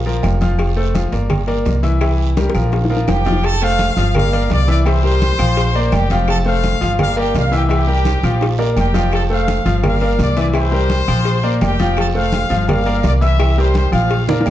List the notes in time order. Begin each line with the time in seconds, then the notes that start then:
Already playing: A#1
0.05 F3 F4 A#4, high conga, low agogo
0.23 F1, cowbell, high conga, low timbale, low agogo, short guiro, claves
0.41 F3 F4 F5, cowbell, high conga, short guiro
0.59 cowbell, high conga, low agogo, long guiro, claves
0.77 A3 A4 C5, high conga
0.94 F3 F4 F5, cowbell, high conga, low timbale, low agogo, short guiro
1.12 G1 A#3 A#4 D5, cowbell, high conga, low agogo, short guiro
1.30 cowbell, high conga, low conga, low agogo, long guiro, claves
1.47 A#3 A#4 D5, cowbell, high conga
1.65 C2, cowbell, high conga, low timbale, low agogo, short guiro
1.83 E3 E4 E5, cowbell, high conga, short guiro
2.01 E3 E4 E5, cowbell, high conga, low agogo, long guiro, claves
2.20 high conga
2.37 G3 G4 A#4, cowbell, high bongo, high conga, low timbale, low agogo, short guiro
2.50 high bongo
2.54 A#1 F3 F4 A#4, low agogo, short guiro, claves
2.72 cowbell, high bongo, high conga, long guiro
2.85 low bongo
2.90 F3 F4 A#4, high conga, high timbale, low agogo
2.97 low bongo
3.08 F1 G4 G5, cowbell, low bongo, high conga, high timbale, low agogo, short guiro, claves
3.25 F3 F4 F5, cowbell, high conga, low timbale, short guiro
3.32 low bongo
3.43 A4 A5, cowbell, low agogo, long guiro, claves
3.62 A3 A4 C5 F5, high conga
3.79 cowbell, high conga, low timbale, low agogo, short guiro
3.97 G1 F3 F4 F5, cowbell, low agogo, short guiro
4.14 A#3 A#4 D5 F5, cowbell, high conga, low conga, low agogo, long guiro, claves
4.32 A#3 A#4 D5, cowbell, high conga
4.50 C2 D5 D6, cowbell, high conga, low timbale, low agogo, short guiro
4.68 E3 E4 D5 E5 D6, cowbell, high conga, short guiro
4.85 E3 E4 C5 E5 C6, cowbell, high conga, low agogo, long guiro, claves
5.03 G3 G4 A#4, high conga
5.22 cowbell, high conga, low timbale, low agogo, short guiro
5.39 A#1 F3 F4 F5, low agogo, short guiro, claves
5.57 cowbell, high conga, long guiro
5.74 A#3 A#4 D5, high conga, low agogo
5.92 F1 G4 G5, cowbell, high conga, low timbale, low agogo, short guiro, claves
6.10 F3 F4 F5, cowbell, high conga, short guiro
6.28 A4 A5, cowbell, high conga, low agogo, long guiro, claves
6.45 A3 A4 C5 F5, high conga
6.64 cowbell, high conga, low timbale, low agogo, short guiro
6.81 G1 F3 F4 F5, cowbell, high conga, low agogo, short guiro
6.99 A#3 A#4 D5 F5, cowbell, high conga, low conga, low agogo, long guiro, claves
7.16 A#3 G4 A#4 D5 G5, cowbell, high conga
7.35 C2 F5, cowbell, high conga, low timbale, low agogo, short guiro
7.52 E3 E4 G4 E5, cowbell, high conga, short guiro
7.56 G5
7.69 E3 E4 G4 E5, cowbell, high conga, low agogo, long guiro, claves
7.74 G5
7.87 G3 G4 A#4, high conga
8.05 cowbell, high conga, high timbale, low agogo, short guiro
8.23 A#1 F3 F4 F5, low agogo, short guiro, claves
8.41 cowbell, high conga, high timbale, long guiro
8.58 A#3 A#4 D5, high conga, low timbale, low agogo
8.76 F1 G4 G5, cowbell, high conga, low timbale, low agogo, short guiro, claves
8.94 F3 F4 F5, cowbell, high conga, low timbale, short guiro
9.12 A4 A5, cowbell, high conga, low agogo, long guiro, claves
9.30 A3 A4 C5 F5, high conga
9.48 cowbell, high conga, low timbale, low agogo, short guiro
9.65 G1 F3 F4 F5, cowbell, low agogo, short guiro
9.83 A#3 A#4 D5 F5, cowbell, high conga, low conga, low agogo, long guiro, claves
10.01 A#3 A#4 D5, cowbell, high conga
10.19 C2 D5 D6, cowbell, high conga, low timbale, low agogo, short guiro
10.37 E3 E4 D5 E5 D6, cowbell, high conga, short guiro
10.54 E3 E4 E5 C6, cowbell, high conga, low agogo, long guiro, claves
10.58 C5
10.72 G3 G4 A#4, high conga
10.90 cowbell, high conga, low timbale, low agogo, short guiro
11.08 A#1 F3 F4 F5, low agogo, short guiro, claves
11.25 cowbell, high conga, long guiro
11.43 A#3 A#4 D5, high conga, low agogo
11.61 F1 G4 G5, cowbell, high conga, low timbale, low agogo, short guiro, claves
11.79 F3 F4 F5, cowbell, high conga, short guiro
11.97 A4 A5, cowbell, high conga, low agogo, long guiro, claves
12.14 A3 A4 C5 F5, high conga
12.32 cowbell, high conga, low timbale, low agogo, short guiro
12.49 G1 F3 F4 F5, cowbell, low agogo, short guiro
12.68 A#3 A#4 D5 F5, cowbell, high conga, low conga, low agogo, long guiro, claves
12.86 A#3 A#4 D5, cowbell, high conga
13.03 C2 D5 D6, cowbell, high conga, low timbale, low agogo, short guiro
13.21 E3 E4 E5 E6, cowbell, high conga, short guiro
13.39 E3 E4 E5, cowbell, high conga, low agogo, long guiro, claves
13.58 G3 G4 A#4 C5 C6, high conga
13.74 C5 C6, cowbell, high conga, low timbale, low agogo, short guiro
13.92 A#1 F3 F4 F5, high conga, low agogo, short guiro, claves
14.10 cowbell, long guiro
14.28 A#3 A#4 D5, high bongo, low conga, high timbale, low agogo
14.41 low bongo
14.46 F1, cowbell, low conga, low timbale, low agogo, short guiro, claves